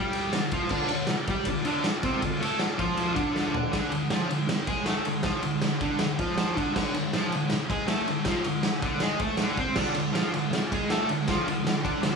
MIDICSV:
0, 0, Header, 1, 5, 480
1, 0, Start_track
1, 0, Key_signature, -1, "minor"
1, 0, Tempo, 377358
1, 909, Time_signature, 4, 2, 24, 8
1, 15464, End_track
2, 0, Start_track
2, 0, Title_t, "Transistor combo organ"
2, 0, Program_c, 0, 18
2, 0, Note_on_c, 0, 65, 93
2, 0, Note_on_c, 0, 69, 80
2, 0, Note_on_c, 0, 74, 90
2, 0, Note_on_c, 0, 77, 75
2, 146, Note_off_c, 0, 77, 0
2, 177, Note_on_c, 0, 81, 65
2, 254, Note_off_c, 0, 65, 0
2, 258, Note_off_c, 0, 74, 0
2, 260, Note_off_c, 0, 69, 0
2, 398, Note_off_c, 0, 81, 0
2, 413, Note_on_c, 0, 65, 75
2, 413, Note_on_c, 0, 81, 71
2, 418, Note_on_c, 0, 69, 72
2, 418, Note_on_c, 0, 74, 90
2, 644, Note_off_c, 0, 81, 0
2, 646, Note_on_c, 0, 84, 68
2, 752, Note_off_c, 0, 65, 0
2, 754, Note_off_c, 0, 69, 0
2, 755, Note_off_c, 0, 74, 0
2, 879, Note_off_c, 0, 84, 0
2, 880, Note_on_c, 0, 65, 105
2, 886, Note_on_c, 0, 69, 101
2, 894, Note_on_c, 0, 74, 114
2, 1225, Note_off_c, 0, 65, 0
2, 1228, Note_off_c, 0, 69, 0
2, 1232, Note_off_c, 0, 74, 0
2, 1367, Note_on_c, 0, 65, 91
2, 1374, Note_on_c, 0, 74, 90
2, 1386, Note_on_c, 0, 69, 82
2, 1709, Note_off_c, 0, 65, 0
2, 1712, Note_off_c, 0, 74, 0
2, 1718, Note_off_c, 0, 69, 0
2, 1833, Note_on_c, 0, 74, 97
2, 1848, Note_on_c, 0, 65, 85
2, 1848, Note_on_c, 0, 69, 81
2, 2181, Note_off_c, 0, 74, 0
2, 2189, Note_off_c, 0, 65, 0
2, 2189, Note_off_c, 0, 69, 0
2, 2329, Note_on_c, 0, 69, 70
2, 2332, Note_on_c, 0, 65, 73
2, 2339, Note_on_c, 0, 74, 95
2, 2669, Note_off_c, 0, 69, 0
2, 2671, Note_off_c, 0, 65, 0
2, 2674, Note_off_c, 0, 74, 0
2, 2747, Note_on_c, 0, 65, 107
2, 2754, Note_on_c, 0, 69, 90
2, 2780, Note_on_c, 0, 74, 109
2, 3118, Note_off_c, 0, 65, 0
2, 3122, Note_off_c, 0, 69, 0
2, 3135, Note_off_c, 0, 74, 0
2, 3269, Note_on_c, 0, 69, 81
2, 3276, Note_on_c, 0, 65, 86
2, 3289, Note_on_c, 0, 74, 95
2, 3620, Note_off_c, 0, 69, 0
2, 3623, Note_off_c, 0, 65, 0
2, 3630, Note_off_c, 0, 74, 0
2, 3744, Note_on_c, 0, 69, 83
2, 3753, Note_on_c, 0, 65, 85
2, 3756, Note_on_c, 0, 74, 91
2, 4098, Note_off_c, 0, 69, 0
2, 4102, Note_off_c, 0, 65, 0
2, 4104, Note_off_c, 0, 74, 0
2, 4216, Note_on_c, 0, 65, 77
2, 4217, Note_on_c, 0, 74, 87
2, 4221, Note_on_c, 0, 69, 74
2, 4574, Note_off_c, 0, 65, 0
2, 4575, Note_off_c, 0, 74, 0
2, 4577, Note_off_c, 0, 69, 0
2, 12403, Note_on_c, 0, 69, 91
2, 12407, Note_on_c, 0, 65, 110
2, 12414, Note_on_c, 0, 74, 113
2, 12750, Note_off_c, 0, 69, 0
2, 12752, Note_off_c, 0, 65, 0
2, 12755, Note_off_c, 0, 74, 0
2, 12889, Note_on_c, 0, 65, 88
2, 12904, Note_on_c, 0, 74, 97
2, 12912, Note_on_c, 0, 69, 84
2, 13232, Note_off_c, 0, 65, 0
2, 13240, Note_off_c, 0, 74, 0
2, 13244, Note_off_c, 0, 69, 0
2, 13374, Note_on_c, 0, 69, 78
2, 13382, Note_on_c, 0, 65, 85
2, 13393, Note_on_c, 0, 74, 98
2, 13714, Note_off_c, 0, 69, 0
2, 13718, Note_off_c, 0, 65, 0
2, 13724, Note_off_c, 0, 74, 0
2, 13862, Note_on_c, 0, 65, 79
2, 13865, Note_on_c, 0, 74, 97
2, 13873, Note_on_c, 0, 69, 76
2, 14198, Note_off_c, 0, 65, 0
2, 14199, Note_off_c, 0, 74, 0
2, 14203, Note_off_c, 0, 69, 0
2, 14342, Note_on_c, 0, 65, 92
2, 14352, Note_on_c, 0, 69, 95
2, 14358, Note_on_c, 0, 74, 111
2, 14677, Note_off_c, 0, 65, 0
2, 14682, Note_off_c, 0, 69, 0
2, 14685, Note_off_c, 0, 74, 0
2, 14813, Note_on_c, 0, 65, 86
2, 14848, Note_on_c, 0, 69, 82
2, 14859, Note_on_c, 0, 74, 99
2, 15152, Note_off_c, 0, 65, 0
2, 15169, Note_off_c, 0, 69, 0
2, 15175, Note_off_c, 0, 74, 0
2, 15334, Note_on_c, 0, 69, 85
2, 15338, Note_on_c, 0, 65, 95
2, 15342, Note_on_c, 0, 74, 97
2, 15464, Note_off_c, 0, 65, 0
2, 15464, Note_off_c, 0, 69, 0
2, 15464, Note_off_c, 0, 74, 0
2, 15464, End_track
3, 0, Start_track
3, 0, Title_t, "Distorted electric guitar"
3, 0, Program_c, 1, 30
3, 0, Note_on_c, 1, 55, 101
3, 0, Note_on_c, 1, 67, 105
3, 416, Note_off_c, 1, 55, 0
3, 425, Note_off_c, 1, 67, 0
3, 439, Note_on_c, 1, 50, 72
3, 626, Note_off_c, 1, 50, 0
3, 678, Note_on_c, 1, 53, 86
3, 680, Note_on_c, 1, 65, 106
3, 901, Note_off_c, 1, 53, 0
3, 906, Note_on_c, 1, 50, 98
3, 907, Note_off_c, 1, 65, 0
3, 913, Note_on_c, 1, 62, 105
3, 1135, Note_off_c, 1, 50, 0
3, 1143, Note_off_c, 1, 62, 0
3, 1151, Note_on_c, 1, 50, 74
3, 1341, Note_off_c, 1, 50, 0
3, 1634, Note_on_c, 1, 55, 89
3, 1654, Note_on_c, 1, 67, 109
3, 1863, Note_off_c, 1, 55, 0
3, 1873, Note_off_c, 1, 67, 0
3, 1884, Note_on_c, 1, 50, 79
3, 2067, Note_off_c, 1, 50, 0
3, 2100, Note_on_c, 1, 50, 96
3, 2125, Note_on_c, 1, 62, 116
3, 2336, Note_off_c, 1, 50, 0
3, 2348, Note_off_c, 1, 62, 0
3, 2584, Note_on_c, 1, 48, 89
3, 2590, Note_on_c, 1, 60, 102
3, 2818, Note_off_c, 1, 48, 0
3, 2821, Note_off_c, 1, 60, 0
3, 2829, Note_on_c, 1, 50, 75
3, 3020, Note_off_c, 1, 50, 0
3, 3058, Note_on_c, 1, 57, 97
3, 3070, Note_on_c, 1, 69, 103
3, 3295, Note_off_c, 1, 57, 0
3, 3301, Note_off_c, 1, 69, 0
3, 3533, Note_on_c, 1, 53, 100
3, 3554, Note_on_c, 1, 65, 108
3, 4001, Note_off_c, 1, 53, 0
3, 4006, Note_on_c, 1, 50, 98
3, 4014, Note_off_c, 1, 65, 0
3, 4019, Note_on_c, 1, 62, 101
3, 4717, Note_off_c, 1, 50, 0
3, 4726, Note_off_c, 1, 62, 0
3, 4732, Note_on_c, 1, 50, 83
3, 4742, Note_on_c, 1, 62, 87
3, 4962, Note_off_c, 1, 50, 0
3, 4978, Note_on_c, 1, 50, 73
3, 4979, Note_off_c, 1, 62, 0
3, 5176, Note_off_c, 1, 50, 0
3, 5224, Note_on_c, 1, 53, 82
3, 5230, Note_on_c, 1, 65, 90
3, 5448, Note_off_c, 1, 53, 0
3, 5453, Note_on_c, 1, 50, 78
3, 5463, Note_off_c, 1, 65, 0
3, 5654, Note_off_c, 1, 50, 0
3, 5951, Note_on_c, 1, 56, 97
3, 5953, Note_on_c, 1, 68, 112
3, 6176, Note_off_c, 1, 56, 0
3, 6181, Note_on_c, 1, 57, 84
3, 6186, Note_off_c, 1, 68, 0
3, 6205, Note_on_c, 1, 69, 97
3, 6420, Note_off_c, 1, 57, 0
3, 6431, Note_on_c, 1, 50, 67
3, 6432, Note_off_c, 1, 69, 0
3, 6625, Note_off_c, 1, 50, 0
3, 6661, Note_on_c, 1, 53, 94
3, 6679, Note_on_c, 1, 65, 105
3, 6898, Note_off_c, 1, 53, 0
3, 6904, Note_on_c, 1, 50, 72
3, 6910, Note_off_c, 1, 65, 0
3, 7101, Note_off_c, 1, 50, 0
3, 7156, Note_on_c, 1, 50, 70
3, 7348, Note_off_c, 1, 50, 0
3, 7400, Note_on_c, 1, 50, 100
3, 7405, Note_on_c, 1, 62, 110
3, 7631, Note_off_c, 1, 50, 0
3, 7633, Note_off_c, 1, 62, 0
3, 7655, Note_on_c, 1, 50, 78
3, 7838, Note_off_c, 1, 50, 0
3, 7885, Note_on_c, 1, 53, 94
3, 7891, Note_on_c, 1, 65, 110
3, 8340, Note_off_c, 1, 53, 0
3, 8345, Note_on_c, 1, 50, 92
3, 8356, Note_off_c, 1, 65, 0
3, 8361, Note_on_c, 1, 62, 97
3, 8561, Note_off_c, 1, 50, 0
3, 8575, Note_off_c, 1, 62, 0
3, 8576, Note_on_c, 1, 50, 99
3, 8590, Note_on_c, 1, 62, 97
3, 8820, Note_off_c, 1, 50, 0
3, 8827, Note_off_c, 1, 62, 0
3, 8842, Note_on_c, 1, 50, 75
3, 9031, Note_off_c, 1, 50, 0
3, 9078, Note_on_c, 1, 53, 86
3, 9094, Note_on_c, 1, 65, 90
3, 9311, Note_off_c, 1, 53, 0
3, 9319, Note_off_c, 1, 65, 0
3, 9342, Note_on_c, 1, 50, 77
3, 9522, Note_off_c, 1, 50, 0
3, 9788, Note_on_c, 1, 56, 96
3, 9803, Note_on_c, 1, 68, 98
3, 10013, Note_off_c, 1, 56, 0
3, 10018, Note_on_c, 1, 57, 81
3, 10026, Note_off_c, 1, 68, 0
3, 10031, Note_on_c, 1, 69, 97
3, 10260, Note_off_c, 1, 57, 0
3, 10267, Note_off_c, 1, 69, 0
3, 10274, Note_on_c, 1, 50, 77
3, 10467, Note_off_c, 1, 50, 0
3, 10508, Note_on_c, 1, 53, 91
3, 10531, Note_on_c, 1, 65, 102
3, 10743, Note_off_c, 1, 53, 0
3, 10748, Note_on_c, 1, 50, 75
3, 10757, Note_off_c, 1, 65, 0
3, 10944, Note_off_c, 1, 50, 0
3, 10991, Note_on_c, 1, 50, 65
3, 11186, Note_off_c, 1, 50, 0
3, 11210, Note_on_c, 1, 50, 89
3, 11225, Note_on_c, 1, 62, 93
3, 11455, Note_off_c, 1, 50, 0
3, 11463, Note_off_c, 1, 62, 0
3, 11463, Note_on_c, 1, 56, 100
3, 11474, Note_on_c, 1, 68, 101
3, 11702, Note_off_c, 1, 56, 0
3, 11708, Note_off_c, 1, 68, 0
3, 11716, Note_on_c, 1, 57, 94
3, 11732, Note_on_c, 1, 69, 99
3, 11948, Note_off_c, 1, 57, 0
3, 11956, Note_off_c, 1, 69, 0
3, 11956, Note_on_c, 1, 50, 85
3, 11968, Note_on_c, 1, 62, 87
3, 12184, Note_on_c, 1, 60, 78
3, 12188, Note_off_c, 1, 50, 0
3, 12194, Note_off_c, 1, 62, 0
3, 12197, Note_on_c, 1, 72, 100
3, 12418, Note_on_c, 1, 50, 105
3, 12422, Note_off_c, 1, 60, 0
3, 12425, Note_on_c, 1, 62, 102
3, 12428, Note_off_c, 1, 72, 0
3, 12648, Note_off_c, 1, 50, 0
3, 12662, Note_off_c, 1, 62, 0
3, 12663, Note_on_c, 1, 50, 76
3, 12860, Note_off_c, 1, 50, 0
3, 12879, Note_on_c, 1, 53, 88
3, 12890, Note_on_c, 1, 65, 103
3, 13128, Note_off_c, 1, 53, 0
3, 13133, Note_on_c, 1, 50, 73
3, 13134, Note_off_c, 1, 65, 0
3, 13335, Note_off_c, 1, 50, 0
3, 13629, Note_on_c, 1, 56, 101
3, 13643, Note_on_c, 1, 68, 94
3, 13863, Note_off_c, 1, 56, 0
3, 13870, Note_off_c, 1, 68, 0
3, 13872, Note_on_c, 1, 57, 85
3, 13885, Note_on_c, 1, 69, 95
3, 14104, Note_off_c, 1, 57, 0
3, 14110, Note_off_c, 1, 69, 0
3, 14112, Note_on_c, 1, 50, 72
3, 14303, Note_off_c, 1, 50, 0
3, 14350, Note_on_c, 1, 53, 86
3, 14358, Note_on_c, 1, 65, 111
3, 14569, Note_off_c, 1, 53, 0
3, 14574, Note_on_c, 1, 50, 83
3, 14587, Note_off_c, 1, 65, 0
3, 14773, Note_off_c, 1, 50, 0
3, 14802, Note_on_c, 1, 50, 70
3, 15007, Note_off_c, 1, 50, 0
3, 15054, Note_on_c, 1, 50, 94
3, 15062, Note_on_c, 1, 62, 115
3, 15281, Note_off_c, 1, 50, 0
3, 15296, Note_on_c, 1, 50, 74
3, 15297, Note_off_c, 1, 62, 0
3, 15464, Note_off_c, 1, 50, 0
3, 15464, End_track
4, 0, Start_track
4, 0, Title_t, "Muted distorted electric guitar strokes"
4, 1398, Note_on_c, 9, 29, 55
4, 1525, Note_off_c, 9, 29, 0
4, 2368, Note_on_c, 9, 29, 53
4, 2495, Note_off_c, 9, 29, 0
4, 5688, Note_on_c, 9, 29, 59
4, 5815, Note_off_c, 9, 29, 0
4, 9575, Note_on_c, 9, 29, 60
4, 9702, Note_off_c, 9, 29, 0
4, 13364, Note_on_c, 9, 29, 58
4, 13491, Note_off_c, 9, 29, 0
4, 15464, End_track
5, 0, Start_track
5, 0, Title_t, "Drums"
5, 166, Note_on_c, 9, 51, 77
5, 293, Note_off_c, 9, 51, 0
5, 418, Note_on_c, 9, 38, 113
5, 419, Note_on_c, 9, 51, 107
5, 545, Note_off_c, 9, 38, 0
5, 546, Note_off_c, 9, 51, 0
5, 654, Note_on_c, 9, 51, 78
5, 662, Note_on_c, 9, 36, 113
5, 781, Note_off_c, 9, 51, 0
5, 789, Note_off_c, 9, 36, 0
5, 880, Note_on_c, 9, 49, 100
5, 899, Note_on_c, 9, 36, 111
5, 1007, Note_off_c, 9, 49, 0
5, 1026, Note_off_c, 9, 36, 0
5, 1127, Note_on_c, 9, 51, 90
5, 1255, Note_off_c, 9, 51, 0
5, 1360, Note_on_c, 9, 38, 103
5, 1361, Note_on_c, 9, 51, 98
5, 1487, Note_off_c, 9, 38, 0
5, 1488, Note_off_c, 9, 51, 0
5, 1621, Note_on_c, 9, 51, 82
5, 1625, Note_on_c, 9, 36, 111
5, 1748, Note_off_c, 9, 51, 0
5, 1753, Note_off_c, 9, 36, 0
5, 1844, Note_on_c, 9, 51, 116
5, 1863, Note_on_c, 9, 36, 94
5, 1972, Note_off_c, 9, 51, 0
5, 1990, Note_off_c, 9, 36, 0
5, 2096, Note_on_c, 9, 51, 87
5, 2223, Note_off_c, 9, 51, 0
5, 2342, Note_on_c, 9, 38, 112
5, 2344, Note_on_c, 9, 51, 107
5, 2469, Note_off_c, 9, 38, 0
5, 2471, Note_off_c, 9, 51, 0
5, 2580, Note_on_c, 9, 51, 83
5, 2586, Note_on_c, 9, 36, 103
5, 2708, Note_off_c, 9, 51, 0
5, 2713, Note_off_c, 9, 36, 0
5, 2827, Note_on_c, 9, 51, 110
5, 2828, Note_on_c, 9, 36, 87
5, 2954, Note_off_c, 9, 51, 0
5, 2955, Note_off_c, 9, 36, 0
5, 3084, Note_on_c, 9, 51, 92
5, 3211, Note_off_c, 9, 51, 0
5, 3300, Note_on_c, 9, 38, 99
5, 3301, Note_on_c, 9, 51, 98
5, 3427, Note_off_c, 9, 38, 0
5, 3429, Note_off_c, 9, 51, 0
5, 3549, Note_on_c, 9, 36, 111
5, 3549, Note_on_c, 9, 51, 79
5, 3676, Note_off_c, 9, 51, 0
5, 3677, Note_off_c, 9, 36, 0
5, 3782, Note_on_c, 9, 51, 105
5, 3909, Note_off_c, 9, 51, 0
5, 4021, Note_on_c, 9, 51, 70
5, 4025, Note_on_c, 9, 36, 108
5, 4148, Note_off_c, 9, 51, 0
5, 4152, Note_off_c, 9, 36, 0
5, 4273, Note_on_c, 9, 38, 71
5, 4400, Note_off_c, 9, 38, 0
5, 4509, Note_on_c, 9, 43, 90
5, 4636, Note_off_c, 9, 43, 0
5, 4746, Note_on_c, 9, 36, 103
5, 4748, Note_on_c, 9, 38, 110
5, 4749, Note_on_c, 9, 51, 110
5, 4874, Note_off_c, 9, 36, 0
5, 4875, Note_off_c, 9, 38, 0
5, 4876, Note_off_c, 9, 51, 0
5, 4983, Note_on_c, 9, 51, 87
5, 5111, Note_off_c, 9, 51, 0
5, 5220, Note_on_c, 9, 38, 114
5, 5221, Note_on_c, 9, 51, 106
5, 5347, Note_off_c, 9, 38, 0
5, 5349, Note_off_c, 9, 51, 0
5, 5477, Note_on_c, 9, 51, 85
5, 5604, Note_off_c, 9, 51, 0
5, 5710, Note_on_c, 9, 38, 109
5, 5712, Note_on_c, 9, 51, 106
5, 5837, Note_off_c, 9, 38, 0
5, 5839, Note_off_c, 9, 51, 0
5, 5942, Note_on_c, 9, 51, 81
5, 5946, Note_on_c, 9, 36, 113
5, 6069, Note_off_c, 9, 51, 0
5, 6073, Note_off_c, 9, 36, 0
5, 6180, Note_on_c, 9, 38, 121
5, 6182, Note_on_c, 9, 51, 103
5, 6308, Note_off_c, 9, 38, 0
5, 6309, Note_off_c, 9, 51, 0
5, 6424, Note_on_c, 9, 51, 76
5, 6551, Note_off_c, 9, 51, 0
5, 6652, Note_on_c, 9, 38, 118
5, 6653, Note_on_c, 9, 51, 106
5, 6666, Note_on_c, 9, 36, 111
5, 6779, Note_off_c, 9, 38, 0
5, 6780, Note_off_c, 9, 51, 0
5, 6793, Note_off_c, 9, 36, 0
5, 6902, Note_on_c, 9, 51, 87
5, 7029, Note_off_c, 9, 51, 0
5, 7143, Note_on_c, 9, 38, 117
5, 7145, Note_on_c, 9, 51, 99
5, 7271, Note_off_c, 9, 38, 0
5, 7272, Note_off_c, 9, 51, 0
5, 7386, Note_on_c, 9, 51, 79
5, 7390, Note_on_c, 9, 36, 112
5, 7513, Note_off_c, 9, 51, 0
5, 7517, Note_off_c, 9, 36, 0
5, 7618, Note_on_c, 9, 38, 116
5, 7619, Note_on_c, 9, 51, 107
5, 7745, Note_off_c, 9, 38, 0
5, 7746, Note_off_c, 9, 51, 0
5, 7869, Note_on_c, 9, 51, 79
5, 7875, Note_on_c, 9, 36, 112
5, 7997, Note_off_c, 9, 51, 0
5, 8002, Note_off_c, 9, 36, 0
5, 8110, Note_on_c, 9, 38, 126
5, 8111, Note_on_c, 9, 51, 107
5, 8237, Note_off_c, 9, 38, 0
5, 8238, Note_off_c, 9, 51, 0
5, 8360, Note_on_c, 9, 36, 96
5, 8368, Note_on_c, 9, 51, 74
5, 8488, Note_off_c, 9, 36, 0
5, 8495, Note_off_c, 9, 51, 0
5, 8598, Note_on_c, 9, 38, 110
5, 8599, Note_on_c, 9, 36, 109
5, 8599, Note_on_c, 9, 49, 108
5, 8725, Note_off_c, 9, 38, 0
5, 8726, Note_off_c, 9, 36, 0
5, 8726, Note_off_c, 9, 49, 0
5, 8832, Note_on_c, 9, 51, 84
5, 8960, Note_off_c, 9, 51, 0
5, 9074, Note_on_c, 9, 38, 103
5, 9076, Note_on_c, 9, 51, 102
5, 9202, Note_off_c, 9, 38, 0
5, 9203, Note_off_c, 9, 51, 0
5, 9313, Note_on_c, 9, 51, 83
5, 9440, Note_off_c, 9, 51, 0
5, 9536, Note_on_c, 9, 38, 104
5, 9537, Note_on_c, 9, 51, 107
5, 9663, Note_off_c, 9, 38, 0
5, 9664, Note_off_c, 9, 51, 0
5, 9791, Note_on_c, 9, 36, 109
5, 9799, Note_on_c, 9, 51, 80
5, 9918, Note_off_c, 9, 36, 0
5, 9926, Note_off_c, 9, 51, 0
5, 10023, Note_on_c, 9, 38, 124
5, 10024, Note_on_c, 9, 51, 107
5, 10150, Note_off_c, 9, 38, 0
5, 10151, Note_off_c, 9, 51, 0
5, 10273, Note_on_c, 9, 51, 77
5, 10400, Note_off_c, 9, 51, 0
5, 10493, Note_on_c, 9, 38, 126
5, 10494, Note_on_c, 9, 51, 108
5, 10503, Note_on_c, 9, 36, 100
5, 10620, Note_off_c, 9, 38, 0
5, 10621, Note_off_c, 9, 51, 0
5, 10630, Note_off_c, 9, 36, 0
5, 10741, Note_on_c, 9, 51, 87
5, 10868, Note_off_c, 9, 51, 0
5, 10979, Note_on_c, 9, 38, 115
5, 10980, Note_on_c, 9, 51, 97
5, 11106, Note_off_c, 9, 38, 0
5, 11107, Note_off_c, 9, 51, 0
5, 11221, Note_on_c, 9, 51, 79
5, 11225, Note_on_c, 9, 36, 113
5, 11349, Note_off_c, 9, 51, 0
5, 11352, Note_off_c, 9, 36, 0
5, 11450, Note_on_c, 9, 38, 116
5, 11451, Note_on_c, 9, 51, 97
5, 11577, Note_off_c, 9, 38, 0
5, 11578, Note_off_c, 9, 51, 0
5, 11696, Note_on_c, 9, 51, 79
5, 11700, Note_on_c, 9, 36, 111
5, 11823, Note_off_c, 9, 51, 0
5, 11827, Note_off_c, 9, 36, 0
5, 11922, Note_on_c, 9, 38, 118
5, 11924, Note_on_c, 9, 51, 114
5, 12050, Note_off_c, 9, 38, 0
5, 12051, Note_off_c, 9, 51, 0
5, 12176, Note_on_c, 9, 51, 71
5, 12179, Note_on_c, 9, 36, 101
5, 12303, Note_off_c, 9, 51, 0
5, 12306, Note_off_c, 9, 36, 0
5, 12411, Note_on_c, 9, 38, 116
5, 12412, Note_on_c, 9, 57, 109
5, 12419, Note_on_c, 9, 36, 105
5, 12538, Note_off_c, 9, 38, 0
5, 12539, Note_off_c, 9, 57, 0
5, 12546, Note_off_c, 9, 36, 0
5, 12651, Note_on_c, 9, 51, 82
5, 12779, Note_off_c, 9, 51, 0
5, 12913, Note_on_c, 9, 38, 117
5, 12914, Note_on_c, 9, 51, 103
5, 13040, Note_off_c, 9, 38, 0
5, 13041, Note_off_c, 9, 51, 0
5, 13149, Note_on_c, 9, 51, 82
5, 13276, Note_off_c, 9, 51, 0
5, 13396, Note_on_c, 9, 38, 122
5, 13397, Note_on_c, 9, 51, 104
5, 13523, Note_off_c, 9, 38, 0
5, 13524, Note_off_c, 9, 51, 0
5, 13637, Note_on_c, 9, 36, 107
5, 13641, Note_on_c, 9, 51, 88
5, 13764, Note_off_c, 9, 36, 0
5, 13768, Note_off_c, 9, 51, 0
5, 13866, Note_on_c, 9, 38, 121
5, 13867, Note_on_c, 9, 51, 109
5, 13993, Note_off_c, 9, 38, 0
5, 13994, Note_off_c, 9, 51, 0
5, 14107, Note_on_c, 9, 51, 81
5, 14234, Note_off_c, 9, 51, 0
5, 14344, Note_on_c, 9, 38, 120
5, 14345, Note_on_c, 9, 51, 103
5, 14351, Note_on_c, 9, 36, 109
5, 14471, Note_off_c, 9, 38, 0
5, 14473, Note_off_c, 9, 51, 0
5, 14478, Note_off_c, 9, 36, 0
5, 14600, Note_on_c, 9, 51, 93
5, 14727, Note_off_c, 9, 51, 0
5, 14841, Note_on_c, 9, 38, 113
5, 14842, Note_on_c, 9, 51, 99
5, 14968, Note_off_c, 9, 38, 0
5, 14970, Note_off_c, 9, 51, 0
5, 15070, Note_on_c, 9, 36, 112
5, 15079, Note_on_c, 9, 51, 85
5, 15198, Note_off_c, 9, 36, 0
5, 15206, Note_off_c, 9, 51, 0
5, 15303, Note_on_c, 9, 38, 118
5, 15304, Note_on_c, 9, 51, 107
5, 15430, Note_off_c, 9, 38, 0
5, 15432, Note_off_c, 9, 51, 0
5, 15464, End_track
0, 0, End_of_file